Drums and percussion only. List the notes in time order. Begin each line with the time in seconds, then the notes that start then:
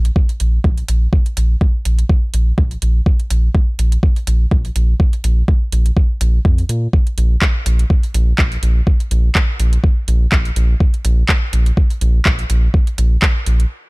0.05 closed hi-hat
0.16 kick
0.29 closed hi-hat
0.40 closed hi-hat
0.64 kick
0.78 closed hi-hat
0.88 closed hi-hat
1.13 kick
1.26 closed hi-hat
1.37 closed hi-hat
1.61 kick
1.85 closed hi-hat
1.99 closed hi-hat
2.09 kick
2.34 closed hi-hat
2.58 kick
2.71 closed hi-hat
2.82 closed hi-hat
3.06 kick
3.20 closed hi-hat
3.30 closed hi-hat
3.55 kick
3.79 closed hi-hat
3.92 closed hi-hat
4.03 kick
4.16 closed hi-hat
4.27 closed hi-hat
4.51 kick
4.65 closed hi-hat
4.76 closed hi-hat
5.00 kick
5.13 closed hi-hat
5.24 closed hi-hat
5.48 kick
5.72 closed hi-hat
5.86 closed hi-hat
5.97 kick
6.21 closed hi-hat
6.45 kick
6.58 closed hi-hat
6.69 closed hi-hat
6.93 kick
7.07 closed hi-hat
7.18 closed hi-hat
7.42 kick, clap
7.66 closed hi-hat
7.79 closed hi-hat
7.90 kick
8.03 closed hi-hat
8.14 closed hi-hat
8.39 kick, clap
8.52 closed hi-hat
8.63 closed hi-hat
8.87 kick
9.00 closed hi-hat
9.11 closed hi-hat
9.35 kick, clap
9.60 closed hi-hat
9.73 closed hi-hat
9.84 kick
10.08 closed hi-hat
10.32 kick, clap
10.45 closed hi-hat
10.56 closed hi-hat
10.80 kick
10.94 closed hi-hat
11.05 closed hi-hat
11.29 kick, clap
11.53 closed hi-hat
11.66 closed hi-hat
11.77 kick
11.90 closed hi-hat
12.01 closed hi-hat
12.26 kick, clap
12.39 closed hi-hat
12.50 closed hi-hat
12.74 kick
12.87 closed hi-hat
12.98 closed hi-hat
13.22 kick, clap
13.46 closed hi-hat
13.60 closed hi-hat